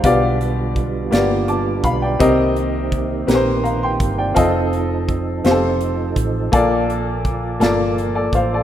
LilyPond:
<<
  \new Staff \with { instrumentName = "Upright piano" } { \time 6/8 \key bes \major \tempo 4. = 55 << { <c'' f''>16 r4. r16 <a'' d'''>8 <f'' b''>16 <d'' g''>16~ | <d'' g''>16 r4. r16 <f'' bes''>16 <g'' c'''>8 <d'' g''>16~ | <d'' g''>16 r2 r8. | r2 r16 <a' d''>16 <c'' f''>16 <a' d''>16 | } \\ { <b f' g' d''>4 r8 <bes b f' g' d''>4 r8 | <c' g' bes' ees''>4 r8 <c' g' bes' ces'' c''>4 r8 | <c' f' a' ees''>4 r8 <c' f' g' a' c''>4 r8 | <bes f' a' d''>4 r8 <bes f' a' d''>4 r8 | } >> }
  \new Staff \with { instrumentName = "Upright piano" } { \clef bass \time 6/8 \key bes \major b,4. r4. | c4. r4. | r2. | bes,4. r4. | }
  \new Staff \with { instrumentName = "Tonewheel organ" } { \time 6/8 \key bes \major << { <d f'>2. | <ees g'>2. | <f a'>2.~ | <f a'>2. | } \\ { <g b>2. | <bes c'>2. | ees'2. | <bes d''>2. | } >> }
  \new Staff \with { instrumentName = "Fingered electric bass" } { \clef bass \time 6/8 \key bes \major b,,4. g,,4 b,,8 | c,4. bes,,4 g,,8 | f,,4. f,,4 a,,8 | bes,,4. g,,4 a,,8 | }
  \new DrumStaff \with { instrumentName = "Drums" } \drummode { \time 6/8 <hh bd>8 hh8 <hh bd>8 <hh sn>8 hh8 <hh bd>8 | <hh bd>8 hh8 <hh bd>8 <hh sn>8 hh8 <hh bd>8 | <hh bd>8 hh8 <hh bd>8 <hh sn>8 hh8 <hh bd>8 | <hh bd>8 hh8 <hh bd>8 <hh sn>8 hh8 <hh bd>8 | }
>>